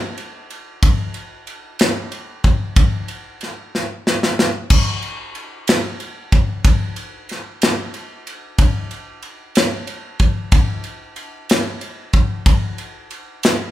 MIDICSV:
0, 0, Header, 1, 2, 480
1, 0, Start_track
1, 0, Tempo, 646552
1, 612, Time_signature, 6, 3, 24, 8
1, 10179, End_track
2, 0, Start_track
2, 0, Title_t, "Drums"
2, 130, Note_on_c, 9, 51, 39
2, 204, Note_off_c, 9, 51, 0
2, 374, Note_on_c, 9, 51, 40
2, 448, Note_off_c, 9, 51, 0
2, 614, Note_on_c, 9, 36, 124
2, 615, Note_on_c, 9, 51, 73
2, 688, Note_off_c, 9, 36, 0
2, 689, Note_off_c, 9, 51, 0
2, 846, Note_on_c, 9, 51, 40
2, 921, Note_off_c, 9, 51, 0
2, 1091, Note_on_c, 9, 51, 42
2, 1165, Note_off_c, 9, 51, 0
2, 1331, Note_on_c, 9, 51, 76
2, 1343, Note_on_c, 9, 38, 107
2, 1405, Note_off_c, 9, 51, 0
2, 1417, Note_off_c, 9, 38, 0
2, 1572, Note_on_c, 9, 51, 44
2, 1646, Note_off_c, 9, 51, 0
2, 1811, Note_on_c, 9, 51, 44
2, 1814, Note_on_c, 9, 36, 96
2, 1885, Note_off_c, 9, 51, 0
2, 1888, Note_off_c, 9, 36, 0
2, 2051, Note_on_c, 9, 51, 68
2, 2052, Note_on_c, 9, 36, 118
2, 2126, Note_off_c, 9, 51, 0
2, 2127, Note_off_c, 9, 36, 0
2, 2288, Note_on_c, 9, 51, 41
2, 2362, Note_off_c, 9, 51, 0
2, 2529, Note_on_c, 9, 51, 42
2, 2547, Note_on_c, 9, 38, 33
2, 2603, Note_off_c, 9, 51, 0
2, 2621, Note_off_c, 9, 38, 0
2, 2783, Note_on_c, 9, 38, 57
2, 2858, Note_off_c, 9, 38, 0
2, 3021, Note_on_c, 9, 38, 84
2, 3095, Note_off_c, 9, 38, 0
2, 3142, Note_on_c, 9, 38, 75
2, 3217, Note_off_c, 9, 38, 0
2, 3261, Note_on_c, 9, 38, 97
2, 3335, Note_off_c, 9, 38, 0
2, 3489, Note_on_c, 9, 49, 102
2, 3492, Note_on_c, 9, 36, 121
2, 3563, Note_off_c, 9, 49, 0
2, 3567, Note_off_c, 9, 36, 0
2, 3730, Note_on_c, 9, 51, 38
2, 3804, Note_off_c, 9, 51, 0
2, 3971, Note_on_c, 9, 51, 41
2, 4045, Note_off_c, 9, 51, 0
2, 4213, Note_on_c, 9, 51, 81
2, 4225, Note_on_c, 9, 38, 112
2, 4287, Note_off_c, 9, 51, 0
2, 4299, Note_off_c, 9, 38, 0
2, 4453, Note_on_c, 9, 51, 43
2, 4528, Note_off_c, 9, 51, 0
2, 4693, Note_on_c, 9, 51, 45
2, 4695, Note_on_c, 9, 36, 103
2, 4767, Note_off_c, 9, 51, 0
2, 4769, Note_off_c, 9, 36, 0
2, 4933, Note_on_c, 9, 51, 70
2, 4934, Note_on_c, 9, 36, 114
2, 5007, Note_off_c, 9, 51, 0
2, 5008, Note_off_c, 9, 36, 0
2, 5169, Note_on_c, 9, 51, 42
2, 5243, Note_off_c, 9, 51, 0
2, 5412, Note_on_c, 9, 51, 43
2, 5431, Note_on_c, 9, 38, 36
2, 5487, Note_off_c, 9, 51, 0
2, 5505, Note_off_c, 9, 38, 0
2, 5654, Note_on_c, 9, 51, 79
2, 5667, Note_on_c, 9, 38, 107
2, 5729, Note_off_c, 9, 51, 0
2, 5741, Note_off_c, 9, 38, 0
2, 5893, Note_on_c, 9, 51, 42
2, 5967, Note_off_c, 9, 51, 0
2, 6139, Note_on_c, 9, 51, 45
2, 6213, Note_off_c, 9, 51, 0
2, 6372, Note_on_c, 9, 51, 73
2, 6374, Note_on_c, 9, 36, 126
2, 6447, Note_off_c, 9, 51, 0
2, 6449, Note_off_c, 9, 36, 0
2, 6613, Note_on_c, 9, 51, 40
2, 6687, Note_off_c, 9, 51, 0
2, 6848, Note_on_c, 9, 51, 42
2, 6922, Note_off_c, 9, 51, 0
2, 7093, Note_on_c, 9, 51, 80
2, 7105, Note_on_c, 9, 38, 102
2, 7167, Note_off_c, 9, 51, 0
2, 7179, Note_off_c, 9, 38, 0
2, 7329, Note_on_c, 9, 51, 47
2, 7404, Note_off_c, 9, 51, 0
2, 7568, Note_on_c, 9, 51, 43
2, 7571, Note_on_c, 9, 36, 90
2, 7642, Note_off_c, 9, 51, 0
2, 7645, Note_off_c, 9, 36, 0
2, 7808, Note_on_c, 9, 51, 75
2, 7811, Note_on_c, 9, 36, 122
2, 7882, Note_off_c, 9, 51, 0
2, 7885, Note_off_c, 9, 36, 0
2, 8045, Note_on_c, 9, 51, 39
2, 8119, Note_off_c, 9, 51, 0
2, 8285, Note_on_c, 9, 51, 40
2, 8359, Note_off_c, 9, 51, 0
2, 8533, Note_on_c, 9, 51, 83
2, 8545, Note_on_c, 9, 38, 108
2, 8607, Note_off_c, 9, 51, 0
2, 8619, Note_off_c, 9, 38, 0
2, 8769, Note_on_c, 9, 51, 42
2, 8843, Note_off_c, 9, 51, 0
2, 9006, Note_on_c, 9, 51, 44
2, 9010, Note_on_c, 9, 36, 98
2, 9080, Note_off_c, 9, 51, 0
2, 9084, Note_off_c, 9, 36, 0
2, 9249, Note_on_c, 9, 51, 66
2, 9250, Note_on_c, 9, 36, 121
2, 9324, Note_off_c, 9, 51, 0
2, 9325, Note_off_c, 9, 36, 0
2, 9489, Note_on_c, 9, 51, 40
2, 9563, Note_off_c, 9, 51, 0
2, 9729, Note_on_c, 9, 51, 42
2, 9804, Note_off_c, 9, 51, 0
2, 9972, Note_on_c, 9, 51, 84
2, 9984, Note_on_c, 9, 38, 116
2, 10046, Note_off_c, 9, 51, 0
2, 10058, Note_off_c, 9, 38, 0
2, 10179, End_track
0, 0, End_of_file